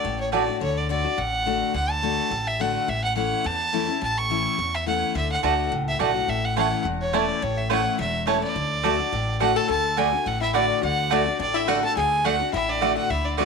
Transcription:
Already playing: D5
0.04 A1 A2
0.20 C#5
0.32 D3 A3 D4 F#4 D5 A5
0.47 D4 F#4
0.61 D2 D3 C#5
0.77 D5
0.89 D3 A3 D4 F#4 D5
1.05 D4 F#4
1.18 A1 A2 F#5
1.46 D3 A3 D4 F#4
1.74 D2 D3 F#5
1.90 A5
2.02 D3 A3 D4 F#4
2.31 A1 A2
2.47 E5
2.59 D3 A3 D4 F#4 F#5
2.88 A1 A2 E5
3.04 F#5
3.16 E3 A3 C#4 E4 F#5
3.44 E2 A5
3.73 E3 A3 C#4 E4
3.88 C#4 E4
4.01 A1 A2 A5
4.18 C#6
4.30 E3 A3 C#4 E4
4.58 E2
4.75 E5
4.86 E3 A3 C#4 E4 F#5
5.15 D2 D3 E5
5.32 F#5
5.43 D2 D3 A3 D4 F#4 D5 F#5 A5
5.71 C#2 A2
5.88 E5
5.99 B1 D3 A3 D4 F#4 D5 F#5 A5
6.14 D4 F#4
6.28 A1 A2 E5
6.45 F#5
6.56 E3 A3 C#4 E4 C#5 F#5 A5
6.85 E1 E2
7.02 C#5
7.13 E3 A3 C#4 E4 C#5 D5 A5
7.42 A1 A2 C#5
7.58 E5
7.70 E3 A3 C#4 E4 C#5 F#5 A5
7.99 E1 E2 E5
8.27 E3 A3 C#4 E4 C#5 A5
8.43 D5
8.55 D2 D3
8.83 D3 A3 D4 F#4 D5 A5
8.99 D4 F#4
9.12 A1 A2
9.40 D3 A3 D4 F#4 D5 F#5 A5
9.56 A4 A5
9.69 D2 D3 A4 A5
9.97 D3 A3 D4 F#4 G#4 D5 F#5 G#5
10.13 D4 F#4
10.26 A1 A2 F#4 F#5
10.41 E4 E5
10.54 D3 A3 D4 F#4 D5 F#5
10.83 D2 D3 F#4 F#5
11.10 D3 A3 D4 F#4 D5 F#5
11.26 D4 F#4
11.39 A1 A2 D4 D5
11.54 E4 E5
11.67 D3 A3 D4 F#4 D5 F#5
11.83 D4 F#4 A4 A5
11.96 D2 D3 G#4 G#5
12.24 D3 A3 D4 F#4 D5 F#5
12.40 D4 F#4
12.53 A1 A2 E4 E5
12.69 D4 D5
12.81 D3 A3 D4 F#4 D5 F#5
12.97 F#4 F#5
13.10 D2 D3 E4 E5
13.25 D4 D5
13.37 D3 A3 D4 F#4 D5 F#5

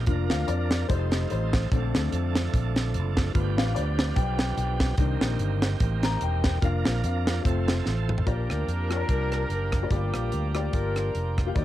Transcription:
0.06 F1 F3 A#3 D4 A#4, kick, closed hi-hat
0.30 D2 F5, snare, closed hi-hat
0.48 F2 D5, closed hi-hat
0.71 snare, closed hi-hat
0.88 F1 F3 G3 A3 C4 D#4 A4 C5, kick, closed hi-hat
1.12 snare, closed hi-hat
1.30 A1 C5, closed hi-hat
1.53 kick, snare, closed hi-hat
1.72 A#1 D3 F3 A3 C4 D4 A4, kick, closed hi-hat
1.95 D2, snare, closed hi-hat
2.12 F2, closed hi-hat
2.35 snare, closed hi-hat
2.54 A#1, kick, closed hi-hat
2.76 snare, closed hi-hat
2.94 F#1, closed hi-hat
3.17 kick, snare, closed hi-hat
3.33 G1 F3 A3 B3 D4 F4, kick, closed hi-hat
3.40 G4
3.58 A1 F5, snare, closed hi-hat
3.75 D2 D5, closed hi-hat
3.99 snare, closed hi-hat
4.16 B1 G5, kick, closed hi-hat
4.39 snare, closed hi-hat
4.57 B1 G5, closed hi-hat
4.80 kick, snare, closed hi-hat
4.97 C2 D#3 A#3 C4 D4 G4, kick, closed hi-hat
5.21 A#1, snare, closed hi-hat
5.39 G1, closed hi-hat
5.62 snare, closed hi-hat
5.80 A1, kick, closed hi-hat
6.03 A#5, snare, closed hi-hat
6.21 E1 G5, closed hi-hat
6.44 kick, snare, closed hi-hat
6.61 F1 F3 A#3 D4 A#4 F5, kick, closed hi-hat
6.86 A#1, snare, closed hi-hat
7.04 F2 F5, closed hi-hat
7.27 snare, closed hi-hat
7.42 F1 F3 A3 C4 A4, kick, closed hi-hat
7.68 snare, closed hi-hat
7.86 A1, snare
8.09 mid tom
8.18 floor tom
8.26 A#1 A#2 F3 A#3 D4 F4 G4 A#4 D5, kick, closed hi-hat
8.50 D2, cross-stick, closed hi-hat
8.68 F2, closed hi-hat
8.89 A#3 F4 G4 C#5, cross-stick, closed hi-hat
8.96 D5
9.09 C2, kick, closed hi-hat
9.32 cross-stick, closed hi-hat
9.50 F#1, closed hi-hat
9.72 kick, cross-stick, closed hi-hat
9.82 A#3 F4 G4 D5
9.90 G1 G2 F3 A#3 D4 F4 F#4 G4 D5, kick, closed hi-hat
9.96 G4
10.14 A#1, cross-stick, closed hi-hat
10.32 D2, closed hi-hat
10.54 A3 F4 G4 D5, cross-stick, closed hi-hat
10.59 A#3
10.73 G1 D4 F4 A#4, kick, closed hi-hat
10.96 cross-stick, closed hi-hat
11.15 F1, closed hi-hat
11.38 kick, cross-stick, closed hi-hat
11.46 A#3 F4 G4 F5
11.55 D#2 D#3 A#3 D#4 F#4 D5, kick, closed hi-hat
11.59 D#3 G4

